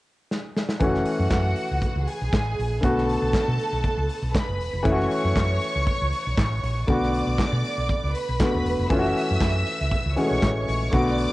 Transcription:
0.31 snare
0.57 snare
0.69 snare
0.80 fingered electric bass F#1, grand piano E3 A3 C#4 F#4, string section F#4 F#5, kick, closed hi-hat
0.94 snare
1.05 open hi-hat
1.19 fingered electric bass F#2
1.30 fingered electric bass F#2, kick, snare, clap, closed hi-hat
1.56 open hi-hat
1.71 fingered electric bass C#2
1.82 kick, closed hi-hat
1.96 fingered electric bass C#2
2.07 string section G#4 G#5, open hi-hat
2.21 fingered electric bass B1
2.33 fingered electric bass A1, kick, snare, clap, closed hi-hat
2.59 fingered electric bass A#1, open hi-hat
2.81 fingered electric bass B1, grand piano D3 A3 B3 F#4, string section A4 A5, kick, closed hi-hat
2.98 snare
3.09 open hi-hat
3.22 fingered electric bass B1
3.33 muted fingered electric bass stroke, kick, snare, clap, closed hi-hat
3.48 fingered electric bass B2
3.59 open hi-hat
3.73 fingered electric bass B1
3.84 kick, closed hi-hat
3.97 fingered electric bass C#2
4.09 open hi-hat
4.22 fingered electric bass B1
4.34 string section B4 B5, kick, snare, clap, closed hi-hat
4.48 fingered electric bass F#1
4.60 fingered electric bass E1, open hi-hat
4.73 fingered electric bass F1
4.83 fingered electric bass F#1, grand piano E3 A3 C#4 E4, string section C#5 C#6, kick, closed hi-hat
4.92 grand piano F#4
5.00 snare
5.11 open hi-hat
5.25 fingered electric bass F#2
5.36 fingered electric bass F#2, kick, snare, clap, closed hi-hat
5.61 open hi-hat
5.76 fingered electric bass C#2
5.87 kick, closed hi-hat
6.02 fingered electric bass C#2
6.13 open hi-hat
6.27 fingered electric bass B1
6.37 fingered electric bass A1, kick, snare, clap, closed hi-hat
6.63 fingered electric bass A#1, open hi-hat
6.87 fingered electric bass B1, grand piano D3 A3 B3 F#4, string section D5 D6, kick, closed hi-hat
7.03 snare
7.14 open hi-hat
7.27 fingered electric bass B1
7.38 kick, snare, clap, closed hi-hat
7.52 fingered electric bass B2
7.65 open hi-hat
7.78 fingered electric bass B1
7.89 kick, closed hi-hat
8.03 fingered electric bass C#2
8.14 string section B4 B5, open hi-hat
8.29 fingered electric bass B1
8.39 grand piano D3 A3 B3 F#4, kick, snare, clap, closed hi-hat
8.54 fingered electric bass D#1
8.65 fingered electric bass E1, open hi-hat
8.79 fingered electric bass F1
8.89 fingered electric bass F#1, grand piano E3 A3 C#4 F4, string section E5 E6, kick, closed hi-hat
8.99 grand piano F#4
9.05 snare
9.17 open hi-hat
9.31 fingered electric bass F#2
9.41 fingered electric bass F#2, kick, snare, clap, closed hi-hat
9.67 open hi-hat
9.81 fingered electric bass C#2
9.92 kick, closed hi-hat
10.06 fingered electric bass C#2
10.16 grand piano E3 G#3 C#4 F#4, string section C#5 C#6, open hi-hat
10.22 grand piano A3
10.31 fingered electric bass B1
10.42 fingered electric bass A1, kick, snare, clap, closed hi-hat
10.68 fingered electric bass A#1, open hi-hat
10.91 fingered electric bass B1, grand piano D3 A3 B3 F#4, string section D5 D6, kick, closed hi-hat
11.07 snare
11.18 open hi-hat

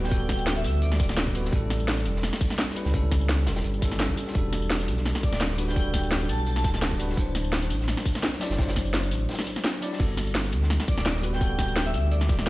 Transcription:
Already playing: sub bass D1, tine electric piano G3 B3 F#4 A4 B4
0.04 digital synth lead G5, snare
0.09 tine electric piano G3 B3 F#4, kick, closed hi-hat
0.14 tine electric piano A4
0.29 digital synth lead G5, kick, snare, closed hi-hat, tambourine
0.38 tambourine
0.46 snare, closed hi-hat
0.56 digital synth lead E5, tambourine
0.64 sub bass D2, closed hi-hat, open hi-hat, tambourine
0.82 digital synth lead D5, closed hi-hat
0.92 snare, tambourine
0.99 sub bass D1, digital synth lead D5, kick, snare, closed hi-hat, tambourine
1.09 digital synth lead D5, snare
1.17 snare, closed hi-hat
1.27 kick, closed hi-hat
1.34 tine electric piano G3 B3 F#4 B4, closed hi-hat, tambourine
1.45 snare
1.50 sub bass A1, tine electric piano G3 C#4 E4, kick, closed hi-hat
1.55 tine electric piano A4
1.70 snare, closed hi-hat, tambourine
1.80 tambourine
1.88 snare, closed hi-hat
1.97 snare, tambourine
2.05 sub bass E1, closed hi-hat, tambourine
2.16 snare
2.23 snare, closed hi-hat
2.33 snare, tambourine
2.41 kick, closed hi-hat, open hi-hat, tambourine
2.50 snare
2.58 snare, closed hi-hat
2.69 snare
2.75 tine electric piano G3 C#4 E4 B4, closed hi-hat, tambourine
2.85 sub bass C#2, snare
2.91 tine electric piano G3 C#4 E4, kick, closed hi-hat
2.96 tine electric piano A4
3.11 kick, snare, closed hi-hat, tambourine
3.21 tambourine
3.29 snare, closed hi-hat
3.39 tambourine
3.47 sub bass E1, snare, closed hi-hat, open hi-hat, tambourine
3.56 snare, closed hi-hat
3.64 sub bass G1, closed hi-hat
3.74 tambourine
3.79 tine electric piano G3 C#4 E4, kick, snare, closed hi-hat, tambourine
3.84 tine electric piano A4
3.92 snare
4.00 snare, closed hi-hat
4.09 kick, closed hi-hat
4.17 closed hi-hat, tambourine
4.27 snare
4.32 sub bass E1, tine electric piano G3 D4 F#4, kick, closed hi-hat
4.38 tine electric piano A4
4.53 snare, closed hi-hat, tambourine
4.62 tambourine
4.70 snare, closed hi-hat
4.80 snare, tambourine
4.88 sub bass B1, closed hi-hat, tambourine
4.97 snare
5.06 snare, closed hi-hat
5.15 snare, tambourine
5.23 digital synth lead D5, kick, closed hi-hat, open hi-hat, tambourine
5.33 sub bass D1, snare
5.41 snare, closed hi-hat
5.51 snare
5.57 tine electric piano G3 D4 F#4 B4, closed hi-hat, tambourine
5.68 digital synth lead G5, snare
5.73 tine electric piano G3 D4 F#4, kick, closed hi-hat
5.79 tine electric piano A4
5.93 digital synth lead G5, kick, snare, closed hi-hat, tambourine
6.03 tambourine
6.11 snare, closed hi-hat
6.21 tambourine
6.29 sub bass B1, digital synth lead A5, closed hi-hat, open hi-hat, tambourine
6.46 digital synth lead A5, closed hi-hat
6.56 digital synth lead A5, snare, tambourine
6.64 sub bass D1, digital synth lead A5, kick, snare, closed hi-hat, tambourine
6.74 digital synth lead A5, snare
6.82 snare, closed hi-hat
6.91 kick, closed hi-hat
6.98 tine electric piano G3 D4 F#4 B4, closed hi-hat, tambourine
7.10 snare
7.15 sub bass D1, tine electric piano F#3 D4 E4, kick, closed hi-hat
7.20 tine electric piano C5
7.35 snare, closed hi-hat, tambourine
7.44 tambourine
7.53 snare, closed hi-hat
7.62 snare, tambourine
7.70 sub bass A1, closed hi-hat, tambourine
7.81 snare
7.88 snare, closed hi-hat
7.97 snare, tambourine
8.06 kick, closed hi-hat, open hi-hat, tambourine
8.15 snare
8.23 snare, closed hi-hat
8.33 snare
8.39 tine electric piano F#3 D4 E4 D5, snare, closed hi-hat, tambourine
8.50 sub bass F#1, snare, closed hi-hat
8.56 tine electric piano F#3 D4 E4, kick, snare, closed hi-hat
8.61 tine electric piano C5
8.68 snare, closed hi-hat
8.76 kick, snare, closed hi-hat, tambourine
8.86 tambourine
8.94 snare, closed hi-hat
9.03 tambourine
9.11 sub bass A1, closed hi-hat, open hi-hat, tambourine
9.29 snare, closed hi-hat
9.33 snare, closed hi-hat
9.38 snare, closed hi-hat, tambourine
9.47 snare, closed hi-hat, tambourine
9.56 snare
9.64 snare, closed hi-hat
9.75 closed hi-hat
9.81 tine electric piano F#3 D4 E4 D5, closed hi-hat, tambourine
9.92 snare
9.97 sub bass G1, tine electric piano G3 B3 F#4, kick, closed hi-hat, crash
10.02 tine electric piano A4
10.17 snare, closed hi-hat, tambourine
10.27 tambourine
10.35 snare, closed hi-hat
10.44 snare, tambourine
10.52 sub bass D2, closed hi-hat, tambourine
10.62 snare
10.70 snare, closed hi-hat
10.80 snare, tambourine
10.88 digital synth lead D5, kick, closed hi-hat, open hi-hat, tambourine
10.97 sub bass D1, snare
11.06 snare, closed hi-hat
11.16 snare
11.22 tine electric piano G3 B3 F#4 B4, closed hi-hat, tambourine
11.33 digital synth lead G5, snare
11.38 tine electric piano G3 B3 F#4, kick, closed hi-hat
11.43 tine electric piano A4
11.58 digital synth lead G5, kick, snare, closed hi-hat, tambourine
11.68 tambourine
11.76 snare, closed hi-hat
11.86 digital synth lead E5, tambourine
11.94 sub bass D2, closed hi-hat, open hi-hat, tambourine
12.11 digital synth lead D5, closed hi-hat
12.21 snare, tambourine
12.28 sub bass D1, digital synth lead D5, kick, snare, closed hi-hat, tambourine
12.39 digital synth lead D5, snare

